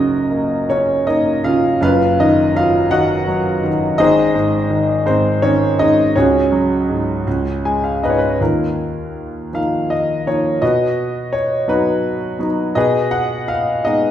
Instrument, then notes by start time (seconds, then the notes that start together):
grand piano
Already playing: F#1 F#2 C#3 D#4 F#4 A#4 D#5
0.30 A#3
0.69 C#3 C#4 C#5
1.07 A#3 D#4 D#5
1.44 C#3 F4 F5
1.81 F#1 F#2 F4 B4 F5
2.19 D#3 D#4 D#5
2.55 F#3 F4 F5
2.91 D#3 F#4 D#5 F#5
3.28 F#3
3.64 D#3
3.98 G#1 G#2 D#4 G#4 C5 D#5
4.35 G#2
4.70 D#3
5.06 G#2 C4 C5
5.42 D#3 C#4 C#5
5.79 G#2 D#4 D#5
6.16 C#2 C#4 F#4 G#4 C#5
6.52 F#3
6.89 G#2
7.27 C#2
7.65 G#3 G#5
7.84 F5
8.03 G#2 B4 D#5
8.10 C#5
8.18 B4
8.40 D#2 D#4 F4 A#4
9.53 F3 A#3 D#4 F5
9.90 D#5
10.27 F3 A#3 D#4 C#5
10.62 B2 F#4 B4 D#5
11.33 C#5
11.68 F#3 B3 D#4 F#4 B4
12.39 F#3 B3 D#4
12.75 B2 G#4 B4 D#5
13.11 F#5
13.48 F5
13.85 G#3 B3 D#4 D#5